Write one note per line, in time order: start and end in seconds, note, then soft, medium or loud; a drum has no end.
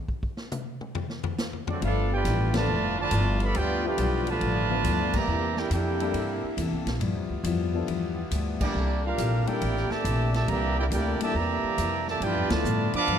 0.08 kick medium
0.23 kick medium
0.37 snare soft
0.52 hi-hat pedal medium
0.52 mid tom loud
0.81 mid tom medium
0.95 floor tom loud
1.10 snare soft
1.23 floor tom loud
1.38 snare loud
1.38 hi-hat pedal medium
1.53 floor tom medium
1.67 1.81 F#3 medium
1.67 1.81 A3 medium
1.67 1.82 C4 medium
1.67 1.81 D4 medium
1.67 1.82 F#4 medium
1.67 1.82 A4 medium
1.67 1.82 D5 medium
1.67 floor tom loud
1.81 2.24 G1 medium
1.81 2.13 G2 medium
1.81 2.48 F3 medium
1.81 5.25 F3 medium
1.81 2.13 F3 medium
1.81 2.48 A3 medium
1.81 5.26 A3 medium
1.81 2.49 B3 medium
1.81 5.25 B3 medium
1.81 2.10 B3 medium
1.81 2.14 B3 medium
1.81 2.49 D4 medium
1.81 2.10 D4 medium
1.81 2.14 E4 medium
1.81 5.25 F4 medium
1.81 2.10 F4 medium
1.81 2.10 A4 medium
1.81 2.10 B4 medium
1.81 2.49 E5 medium
1.81 2.10 F5 loud
1.81 ride medium
2.12 2.52 B3 medium
2.12 2.52 D4 medium
2.12 2.53 F4 medium
2.12 2.52 G4 medium
2.12 2.53 B4 medium
2.12 2.53 D5 medium
2.12 2.53 G5 loud
2.25 2.67 A1 loud
2.25 2.56 G2 medium
2.25 2.56 F3 medium
2.25 2.57 B3 medium
2.25 2.57 E4 medium
2.25 snare soft
2.25 hi-hat pedal medium
2.25 ride medium
2.54 2.97 D3 loud
2.54 2.67 F3 medium
2.54 2.97 F3 medium
2.54 2.67 A3 medium
2.54 2.97 A3 loud
2.54 2.67 B3 medium
2.54 2.67 D4 medium
2.54 2.68 F4 medium
2.54 2.99 F4 medium
2.54 2.99 B4 medium
2.54 2.99 D5 loud
2.54 2.99 A5 loud
2.54 snare loud
2.54 ride medium
2.68 3.10 F1 medium
2.68 2.99 G2 medium
2.68 3.00 F3 medium
2.68 3.00 B3 medium
2.68 3.01 E4 medium
2.98 3.38 D3 medium
2.98 3.38 F3 loud
2.98 3.38 A3 medium
2.98 3.40 F4 loud
2.98 3.40 B4 loud
2.98 3.40 D5 loud
2.98 3.40 A5 loud
3.11 3.54 G1 loud
3.11 3.42 G2 medium
3.11 3.42 F3 medium
3.11 3.43 B3 medium
3.11 3.43 E4 medium
3.11 hi-hat pedal medium
3.11 ride medium
3.40 3.56 D3 medium
3.40 3.56 F3 medium
3.40 3.56 B3 medium
3.40 ride medium
3.45 3.57 A4 medium
3.45 3.57 D5 medium
3.45 3.57 F5 loud
3.45 3.57 B5 loud
3.55 3.97 D2 medium
3.55 3.85 G2 soft
3.55 3.86 F3 medium
3.55 3.86 B3 medium
3.55 3.85 B3 medium
3.55 3.86 D4 loud
3.55 3.87 E4 medium
3.55 3.86 F4 loud
3.55 3.86 G4 medium
3.55 3.86 B4 medium
3.55 3.86 D5 loud
3.55 3.85 G5 loud
3.55 ride medium
3.84 4.39 F3 medium
3.84 4.39 A3 medium
3.84 4.39 B3 medium
3.84 4.26 B3 medium
3.84 4.39 D4 medium
3.84 4.26 D4 medium
3.84 4.27 F4 medium
3.84 4.26 G4 medium
3.84 4.26 B4 medium
3.84 4.27 D5 medium
3.84 4.39 E5 medium
3.84 4.27 G5 loud
3.98 4.40 B1 loud
3.98 4.29 G2 medium
3.98 4.29 F3 medium
3.98 4.29 B3 medium
3.98 4.30 E4 medium
3.98 hi-hat pedal medium
3.98 ride medium
4.27 5.15 D3 loud
4.27 5.15 F3 loud
4.27 5.15 A3 loud
4.27 5.15 F4 loud
4.27 5.15 B4 loud
4.27 5.16 D5 loud
4.27 5.16 A5 loud
4.27 ride medium
4.40 4.83 A1 medium
4.40 4.72 G2 medium
4.40 4.73 F3 medium
4.40 4.73 B3 medium
4.40 4.73 E4 medium
4.40 ride medium
4.70 4.83 F3 medium
4.70 4.83 A3 medium
4.70 4.84 B3 medium
4.70 4.84 D4 medium
4.70 4.84 F4 medium
4.84 5.27 D2 loud
4.84 5.16 G2 medium
4.84 5.16 F3 medium
4.84 5.16 B3 medium
4.84 5.17 E4 medium
4.84 hi-hat pedal medium
4.84 ride medium
5.13 5.58 E3 medium
5.13 5.58 G3 medium
5.13 5.56 A#3 medium
5.13 5.59 G4 loud
5.13 5.58 D5 medium
5.13 5.59 E5 medium
5.13 5.59 A#5 loud
5.13 kick loud
5.13 crash medium
5.27 5.70 E2 medium
5.27 5.59 C3 medium
5.27 6.99 D3 medium
5.27 12.04 G3 medium
5.27 6.99 A#3 medium
5.27 5.59 A#3 medium
5.27 6.99 E4 medium
5.27 5.60 E4 medium
5.31 5.60 A4 medium
5.57 5.71 A#3 medium
5.57 5.71 E4 medium
5.57 5.72 E4 medium
5.57 5.71 G4 medium
5.57 5.72 A#4 medium
5.57 5.72 D5 medium
5.57 5.72 G5 loud
5.57 snare medium
5.70 6.13 F2 medium
5.70 6.02 C3 medium
5.70 6.02 A#3 medium
5.70 6.55 A#3 medium
5.70 6.55 E4 medium
5.70 6.03 E4 medium
5.70 6.55 G4 medium
5.70 6.03 A4 medium
5.70 6.55 A#4 medium
5.70 6.55 D5 medium
5.70 6.55 G5 medium
5.70 hi-hat pedal medium
5.70 ride medium
6.00 6.14 G3 medium
6.00 6.14 A#3 medium
6.00 6.14 D4 medium
6.00 6.14 E4 medium
6.00 6.14 A4 medium
6.00 ride medium
6.14 6.41 G2 medium
6.14 6.45 C3 soft
6.14 6.46 A#3 soft
6.14 6.46 E4 soft
6.14 6.47 A4 medium
6.14 ride medium
6.43 muted upright bass stroke soft
6.57 6.73 E2 loud
6.57 6.89 C3 medium
6.57 6.89 A#3 medium
6.57 6.89 E4 medium
6.57 6.90 A4 medium
6.57 hi-hat pedal medium
6.57 ride medium
6.72 6.85 C2 medium
6.86 6.99 A#1 medium
6.86 snare medium
6.86 ride medium
7.00 7.15 G2 medium
7.00 7.31 G2 medium
7.00 7.32 F3 medium
7.00 8.74 B3 medium
7.00 7.33 B3 medium
7.00 8.74 E4 medium
7.00 7.33 E4 medium
7.00 8.74 F4 loud
7.00 ride medium
7.15 7.29 F2 medium
7.29 7.43 D2 medium
7.44 7.86 F2 loud
7.44 7.75 G2 medium
7.44 7.76 F3 medium
7.44 7.76 B3 medium
7.44 7.76 E4 medium
7.44 hi-hat pedal medium
7.44 ride medium
7.74 7.87 F3 medium
7.74 7.87 B3 medium
7.74 7.87 D4 medium
7.74 7.88 E4 medium
7.74 7.88 A4 medium
7.87 8.30 E2 medium
7.87 8.19 G2 medium
7.87 8.19 F3 medium
7.87 8.20 B3 medium
7.87 8.20 E4 medium
7.87 ride medium
8.31 8.73 D2 loud
8.31 8.62 G2 medium
8.31 8.63 F3 medium
8.31 8.63 B3 medium
8.31 8.63 E4 medium
8.31 hi-hat pedal medium
8.31 ride medium
8.61 9.02 G3 medium
8.61 9.01 A#3 medium
8.61 9.02 A#3 medium
8.61 9.01 D4 medium
8.61 9.02 E4 medium
8.61 9.01 G4 medium
8.61 9.01 D5 medium
8.61 kick loud
8.61 crash medium
8.74 9.17 C2 medium
8.74 12.04 A#2 medium
8.74 9.05 C3 medium
8.74 12.04 D3 medium
8.74 9.06 A#3 medium
8.74 12.04 D4 medium
8.74 9.07 E4 medium
8.74 9.07 A4 medium
9.05 9.45 G3 medium
9.05 9.45 A#3 medium
9.05 9.46 D4 medium
9.05 9.45 F4 medium
9.05 9.46 G4 medium
9.05 9.45 A#4 medium
9.05 9.46 F5 medium
9.18 9.45 A#1 loud
9.18 9.49 C3 medium
9.18 9.49 A#3 medium
9.18 9.50 E4 medium
9.18 9.50 A4 medium
9.18 hi-hat pedal medium
9.18 ride medium
9.47 9.60 G3 medium
9.47 9.60 A#3 medium
9.47 9.91 A#3 medium
9.47 9.61 D4 medium
9.47 9.91 E4 medium
9.47 9.61 E4 medium
9.47 9.91 E4 medium
9.47 9.91 G4 medium
9.47 9.61 A4 medium
9.47 9.91 A#4 medium
9.47 9.90 D5 medium
9.47 9.91 G5 loud
9.47 muted upright bass stroke soft
9.47 ride medium
9.61 9.88 A1 medium
9.61 9.92 C3 soft
9.61 9.93 A#3 soft
9.61 9.93 E4 medium
9.61 9.94 A4 medium
9.61 ride medium
9.77 snare soft
9.90 10.33 A#2 medium
9.90 10.33 E3 medium
9.90 10.33 A3 medium
9.90 10.34 G4 medium
9.90 10.34 D5 medium
9.90 10.34 E5 medium
9.90 10.34 A5 loud
9.90 muted upright bass stroke soft
9.90 snare medium
10.04 10.47 A#1 loud
10.04 10.35 C3 medium
10.04 10.36 A#3 medium
10.04 10.36 E4 medium
10.04 10.36 A4 medium
10.04 hi-hat pedal medium
10.04 ride medium
10.34 10.47 A#2 medium
10.34 10.47 E3 medium
10.34 10.47 A3 medium
10.34 10.48 G4 medium
10.34 10.48 D5 medium
10.34 10.48 E5 medium
10.34 10.48 A5 medium
10.34 snare soft
10.34 ride medium
10.48 10.90 C2 medium
10.48 10.79 C3 medium
10.48 10.78 E3 medium
10.48 10.78 G3 medium
10.48 10.79 A#3 medium
10.48 10.78 A#3 loud
10.48 10.80 E4 medium
10.48 10.78 G4 loud
10.48 10.80 A4 medium
10.48 10.78 D5 medium
10.48 10.78 E5 medium
10.48 10.78 A#5 loud
10.48 ride medium
10.79 10.85 A#3 medium
10.79 10.85 E4 medium
10.79 10.85 G4 medium
10.79 10.85 A#4 medium
10.79 10.85 D5 medium
10.79 10.86 G5 loud
10.91 11.18 D2 loud
10.91 11.22 C3 medium
10.91 11.22 A#3 medium
10.91 11.19 A#3 medium
10.91 11.22 E4 medium
10.91 11.19 E4 medium
10.91 11.19 G4 medium
10.91 11.23 A4 medium
10.91 11.19 A#4 medium
10.91 11.20 D5 medium
10.91 11.19 G5 medium
10.91 hi-hat pedal medium
10.91 ride medium
11.20 11.36 A#2 medium
11.20 11.35 E3 medium
11.20 11.33 G3 medium
11.20 11.36 A3 medium
11.20 11.34 A#3 medium
11.20 11.34 D4 medium
11.20 11.34 E4 medium
11.20 11.35 G4 medium
11.20 11.34 A4 medium
11.20 11.36 D5 medium
11.20 11.35 E5 medium
11.20 11.36 A5 loud
11.20 muted upright bass stroke soft
11.20 ride medium
11.34 11.61 E2 medium
11.34 11.65 C3 soft
11.34 12.07 E3 medium
11.34 12.08 G3 loud
11.34 11.66 A#3 soft
11.34 12.08 A#3 medium
11.34 11.66 E4 medium
11.34 12.08 G4 medium
11.34 11.66 A4 medium
11.34 12.08 D5 loud
11.34 12.08 E5 medium
11.34 12.08 A#5 loud
11.63 muted upright bass stroke soft
11.78 12.20 F2 loud
11.78 12.09 C3 medium
11.78 12.09 A#3 medium
11.78 12.09 E4 medium
11.78 12.10 A4 medium
11.78 hi-hat pedal medium
11.78 ride medium
12.07 12.21 A#2 medium
12.07 12.21 E3 medium
12.07 12.21 A3 medium
12.07 12.22 G4 medium
12.07 12.22 D5 medium
12.07 12.22 E5 medium
12.07 12.22 A5 loud
12.07 snare soft
12.20 12.35 G2 medium
12.20 12.51 G2 medium
12.20 13.19 F3 medium
12.20 12.52 F3 medium
12.20 13.19 A3 medium
12.20 13.19 B3 medium
12.20 12.51 B3 loud
12.20 12.53 B3 medium
12.20 12.51 D4 loud
12.20 12.53 E4 medium
12.20 13.19 F4 loud
12.20 12.51 F4 loud
12.20 12.51 G4 loud
12.20 12.51 B4 loud
12.20 12.50 D5 loud
12.20 12.52 G5 loud
12.20 ride medium
12.35 12.49 F2 medium
12.50 12.63 D2 medium
12.50 12.94 D3 medium
12.50 12.63 F3 medium
12.50 12.93 F3 medium
12.50 12.94 A3 medium
12.50 12.63 B3 medium
12.50 12.63 D4 medium
12.50 12.64 E4 medium
12.50 12.94 F4 loud
12.50 12.64 A4 medium
12.50 12.94 B4 medium
12.50 12.94 D5 loud
12.50 12.94 A5 loud
12.50 snare loud
12.50 ride medium
12.64 12.95 G2 medium
12.64 12.91 A2 loud
12.64 12.95 F3 medium
12.64 12.96 B3 medium
12.64 12.96 E4 medium
12.64 hi-hat pedal medium
12.93 13.19 F3 loud
12.93 13.19 B3 loud
12.93 13.19 D4 loud
12.93 13.19 B4 loud
12.93 13.19 F5 loud
12.93 13.19 A5 loud
12.93 13.19 D6 loud
12.93 muted upright bass stroke soft
12.93 ride medium
13.08 13.19 G2 medium
13.08 13.19 G2 soft
13.08 13.19 F3 medium
13.08 13.19 B3 medium
13.08 13.19 E4 medium
13.08 ride medium